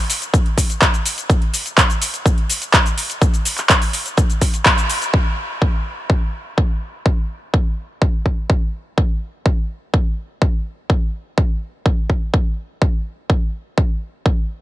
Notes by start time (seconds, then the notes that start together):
0.10 open hi-hat, shaker
0.22 closed hi-hat, shaker
0.34 kick, closed hi-hat, shaker
0.46 closed hi-hat
0.58 kick, open hi-hat, shaker
0.70 closed hi-hat, shaker
0.82 kick, clap, closed hi-hat, shaker
0.94 closed hi-hat, shaker
1.06 open hi-hat, shaker
1.18 closed hi-hat, shaker
1.30 kick, closed hi-hat, shaker
1.42 closed hi-hat
1.54 open hi-hat, shaker
1.66 closed hi-hat, shaker
1.78 kick, clap, closed hi-hat, shaker
1.90 closed hi-hat, shaker
2.02 open hi-hat, shaker
2.14 closed hi-hat, shaker
2.26 kick, closed hi-hat, shaker
2.38 closed hi-hat
2.50 open hi-hat, shaker
2.62 closed hi-hat, shaker
2.74 kick, clap, closed hi-hat, shaker
2.86 closed hi-hat, shaker
2.98 open hi-hat, shaker
3.10 closed hi-hat, shaker
3.22 kick, closed hi-hat, shaker
3.34 closed hi-hat, shaker
3.45 open hi-hat, shaker
3.58 clap, closed hi-hat, shaker
3.69 kick, clap, closed hi-hat, shaker
3.82 open hi-hat, shaker
3.93 open hi-hat, shaker
4.06 closed hi-hat, shaker
4.17 kick, closed hi-hat, shaker
4.30 closed hi-hat, shaker
4.41 kick, open hi-hat, shaker
4.54 closed hi-hat, shaker
4.66 kick, clap, closed hi-hat, shaker
4.78 closed hi-hat, shaker
4.90 open hi-hat, shaker
5.02 closed hi-hat, shaker
5.14 kick
5.62 kick
6.10 kick
6.58 kick
7.06 kick
7.54 kick
8.02 kick
8.26 kick
8.50 kick
8.98 kick
9.46 kick
9.94 kick
10.42 kick
10.90 kick
11.38 kick
11.86 kick
12.10 kick
12.34 kick
12.82 kick
13.30 kick
13.78 kick
14.26 kick